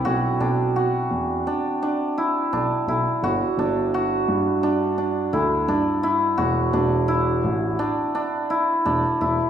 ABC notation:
X:1
M:9/8
L:1/16
Q:3/8=57
K:Bphr
V:1 name="Hammered dulcimer"
F2 D2 F4 D2 D2 E2 D2 E2 | F2 D2 F4 D2 D2 E2 D2 E2 | F2 D2 E4 D2 D2 E2 D2 E2 |]
V:2 name="Grand piano" clef=bass
B,,,2 B,,,4 E,,2 z6 B,,, z B,,, z | G,,, z G,,,4 G,,6 D,,2 G,,4 | E,,,2 E,,,4 A,,,2 z6 E,,, z E,,, z |]